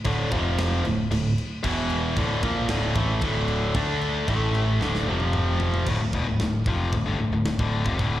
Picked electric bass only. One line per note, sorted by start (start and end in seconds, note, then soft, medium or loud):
0.05 0.30 D1 loud
0.31 0.81 F1 loud
0.84 1.09 D1 medium
1.11 1.36 D1 medium
1.64 2.13 E1 loud
2.17 2.41 D1 loud
2.43 2.68 A#1 medium
2.69 2.94 D1 medium
2.95 3.20 A1 loud
3.22 3.71 D1 medium
3.75 4.24 D2 loud
4.28 4.77 A1 medium
4.82 5.06 D1 medium
5.08 5.84 F1 medium
5.86 5.99 D1 medium
6.00 6.12 D1 medium
6.13 6.26 E1 loud
6.27 6.40 D1 medium
6.42 6.65 D1 medium
6.66 6.91 F1 medium
6.92 7.05 D1 medium
7.06 7.18 G1 medium
7.19 7.31 D1 medium
7.32 7.45 D1 medium
7.46 7.58 D1 medium
7.59 7.84 D1 medium
7.86 7.98 F1 medium
7.99 8.20 D1 medium